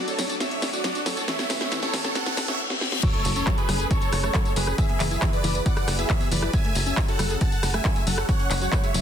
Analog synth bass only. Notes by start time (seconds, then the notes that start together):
0.19 F#1
0.62 F#1
1.06 F#1
1.50 F#1
1.94 F#1
2.38 F#1
3.25 F#1
3.69 F#1
4.13 F#1
4.56 F#1
5.00 F#1
5.44 F#1
5.88 F#1
6.32 F#1
6.75 F#1
7.19 F#1
7.63 F#1
8.07 F#1
8.51 F#1
8.94 F#1